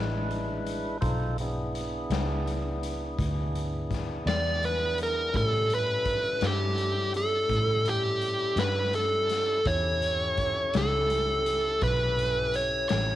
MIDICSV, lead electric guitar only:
0, 0, Header, 1, 2, 480
1, 0, Start_track
1, 0, Tempo, 720288
1, 676, Time_signature, 12, 3, 24, 8
1, 8766, End_track
2, 0, Start_track
2, 0, Title_t, "Lead electric guitar"
2, 0, Program_c, 0, 29
2, 2847, Note_on_c, 0, 74, 78
2, 3087, Note_off_c, 0, 74, 0
2, 3099, Note_on_c, 0, 71, 68
2, 3310, Note_off_c, 0, 71, 0
2, 3351, Note_on_c, 0, 70, 69
2, 3574, Note_off_c, 0, 70, 0
2, 3576, Note_on_c, 0, 69, 77
2, 3811, Note_off_c, 0, 69, 0
2, 3829, Note_on_c, 0, 71, 81
2, 4304, Note_off_c, 0, 71, 0
2, 4306, Note_on_c, 0, 67, 68
2, 4742, Note_off_c, 0, 67, 0
2, 4776, Note_on_c, 0, 69, 77
2, 5257, Note_on_c, 0, 67, 75
2, 5258, Note_off_c, 0, 69, 0
2, 5725, Note_on_c, 0, 71, 83
2, 5739, Note_off_c, 0, 67, 0
2, 5963, Note_off_c, 0, 71, 0
2, 5966, Note_on_c, 0, 69, 70
2, 6445, Note_on_c, 0, 73, 80
2, 6453, Note_off_c, 0, 69, 0
2, 7178, Note_on_c, 0, 69, 74
2, 7180, Note_off_c, 0, 73, 0
2, 7883, Note_off_c, 0, 69, 0
2, 7886, Note_on_c, 0, 71, 78
2, 8367, Note_on_c, 0, 73, 81
2, 8373, Note_off_c, 0, 71, 0
2, 8582, Note_off_c, 0, 73, 0
2, 8590, Note_on_c, 0, 73, 72
2, 8766, Note_off_c, 0, 73, 0
2, 8766, End_track
0, 0, End_of_file